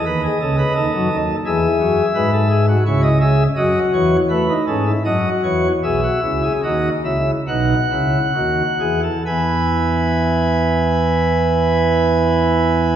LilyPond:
<<
  \new Staff \with { instrumentName = "Pipe organ" } { \time 4/4 \key e \major \tempo 4 = 76 << { dis''2 e''2 | cis''16 dis''16 e''8 dis''8 cis''8 b'8 a'8 dis''8 cis''8 | e''4 dis''8 e''8 fis''2 | <b e' gis''>1 | } \\ { b'16 gis'16 a'16 b'16 a'4 gis'4 b'16 a'16 gis'16 fis'16 | e'8 gis'8 fis'4 e'16 dis'16 cis'16 e'16 fis'4 | gis'16 fis'16 e'16 gis'16 fis'8 e'8 dis'8 e'8 fis'8 gis'16 a'16 | b'1 | } >> }
  \new Staff \with { instrumentName = "Pipe organ" } { \clef bass \time 4/4 \key e \major <dis, dis>8 <cis, cis>8 <dis, dis>16 <fis, fis>16 <dis, dis>8 <e, e>8 <fis, fis>8 <gis, gis>4 | <cis, cis>4 <fis, fis>8 <e, e>8 a8 <gis, gis>8 <fis, fis>8 <e, e>8 | <b,, b,>8 <cis, cis>8 <dis, dis>8 <cis, cis>8 <b,, b,>8 <cis, cis>8 <dis, dis>8 <e, e>8 | <e, e>1 | }
>>